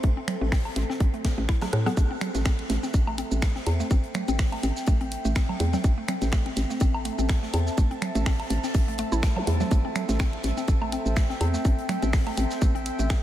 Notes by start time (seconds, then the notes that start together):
Already playing: C4 A4 C5 E5 G5
0.03 A1 A3, kick, closed hi-hat
0.17 C4
0.28 finger snap, closed hi-hat, low conga
0.41 A1 A3
0.52 C4, finger snap, kick, snare, open hi-hat
0.65 low woodblock
0.76 A1 A3, snare, closed hi-hat
0.90 C4, snare
1.00 A1, kick, closed hi-hat
1.14 A3, closed hi-hat
1.25 A3, kick, snare, closed hi-hat
1.38 A1 A3
1.49 E4, finger snap, kick, snare, closed hi-hat
1.61 A3, cross-stick, snare, closed hi-hat, low conga, low woodblock
1.73 A2, cross-stick, closed hi-hat
1.86 B3, cross-stick, snare, closed hi-hat, low conga
1.97 A1 A3 C4, kick, closed hi-hat, shaker
2.11 C4
2.21 finger snap, closed hi-hat, low conga, shaker
2.29 A4
2.35 A1 A3, snare, closed hi-hat, shaker
2.45 C4, finger snap, kick, snare, closed hi-hat, shaker
2.53 E5
2.59 closed hi-hat
2.69 A1 A3, snare, closed hi-hat, shaker
2.83 C4 G5, snare, shaker
2.94 A1, kick, closed hi-hat, shaker
3.07 A3, low woodblock
3.18 C4, closed hi-hat, shaker
3.31 A1, shaker
3.42 A3, finger snap, kick, snare, closed hi-hat, shaker
3.55 C4, snare
3.66 E2, closed hi-hat, low woodblock, shaker
3.80 A3, snare, shaker
3.91 A1 C4, kick, closed hi-hat, shaker
4.04 closed hi-hat
4.14 A3, finger snap, closed hi-hat, low conga, shaker
4.28 A1 C4, closed hi-hat, shaker
4.39 finger snap, kick, snare, open hi-hat, shaker
4.52 A3, closed hi-hat, low woodblock
4.63 A1 C4, closed hi-hat, shaker
4.76 snare, shaker
4.86 A1 A3, kick, closed hi-hat, shaker
5.01 C4, closed hi-hat
5.12 closed hi-hat, shaker
5.25 A1 A3, shaker
5.36 C4, finger snap, kick, snare, closed hi-hat, shaker
5.49 low conga, low woodblock
5.60 E2 A3, closed hi-hat, shaker
5.73 C4, snare, low conga, shaker
5.84 A1, kick, closed hi-hat, shaker
5.98 A3
6.08 C4, finger snap, closed hi-hat, low conga, shaker
6.22 A1, snare, closed hi-hat, shaker
6.32 A3, finger snap, kick, snare, closed hi-hat, shaker
6.46 C4, closed hi-hat
6.57 A1, snare, closed hi-hat, shaker
6.70 A3 A5, snare, shaker
6.80 A1 C4, kick, closed hi-hat, shaker
6.94 low woodblock
7.05 A3, closed hi-hat, shaker
7.18 A1 C4, shaker
7.29 finger snap, kick, snare, closed hi-hat, shaker
7.43 A3, snare
7.53 E2 C4, closed hi-hat, low woodblock, shaker
7.67 snare, shaker
7.77 A1 A3, kick, closed hi-hat, shaker
7.91 C4, closed hi-hat
8.02 finger snap, closed hi-hat, low conga, shaker
8.15 A1 A3, closed hi-hat, shaker
8.26 C4, finger snap, kick, snare, open hi-hat, shaker
8.40 closed hi-hat, low woodblock
8.50 A1 A3, closed hi-hat, shaker
8.64 C4, snare, shaker
8.74 A1, kick, closed hi-hat, shaker
8.88 A3, closed hi-hat
8.98 A3, closed hi-hat, shaker
9.12 A1 E4, shaker
9.23 A3, finger snap, kick, snare, closed hi-hat, shaker
9.36 zap, low conga, low woodblock
9.47 E2 A3, closed hi-hat, shaker
9.60 A3, snare, low conga, shaker
9.71 A1 A3, kick, closed hi-hat, shaker
9.85 C4
9.95 finger snap, closed hi-hat, low conga, shaker
10.09 A1 A3, snare, closed hi-hat, shaker
10.19 C4, finger snap, kick, snare, closed hi-hat, shaker
10.33 closed hi-hat
10.44 A1 A3, snare, closed hi-hat, shaker
10.57 C4 G5, snare, shaker
10.68 A1, kick, closed hi-hat, shaker
10.82 A3, low woodblock
10.92 C4, closed hi-hat, shaker
11.06 A1, shaker
11.16 A3, finger snap, kick, snare, closed hi-hat, shaker
11.30 C4, snare
11.41 E2, closed hi-hat, low woodblock, shaker
11.54 A3, snare, shaker
11.65 A1 C4, kick, closed hi-hat, shaker
11.79 closed hi-hat
11.89 A3, finger snap, closed hi-hat, low conga, shaker
12.02 A1 C4, closed hi-hat, shaker
12.13 finger snap, kick, snare, open hi-hat, shaker
12.27 A3, closed hi-hat, low woodblock
12.37 A1 C4, closed hi-hat, shaker
12.51 snare, shaker
12.62 A1 A3, kick, closed hi-hat, shaker
12.75 C4, closed hi-hat
12.86 closed hi-hat, shaker
12.99 A1 A3, shaker
13.10 C4, finger snap, kick, snare, closed hi-hat, shaker